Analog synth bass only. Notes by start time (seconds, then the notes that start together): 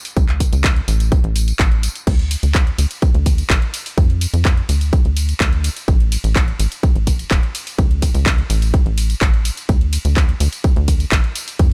0.17 C#2
0.53 C#2
0.88 A1
1.24 A1
1.59 A1
2.07 D2
2.43 D2
2.78 D2
3.14 D2
3.50 A1
3.98 F2
4.34 F2
4.69 D2
5.05 D2
5.40 D2
5.88 A1
6.24 A1
6.59 A1
6.95 A1
7.31 E1
7.79 C#2
8.14 C#2
8.50 A1
8.86 A1
9.21 A1
9.69 D2
10.05 D2
10.40 D2
10.76 D2
11.12 A1
11.59 F2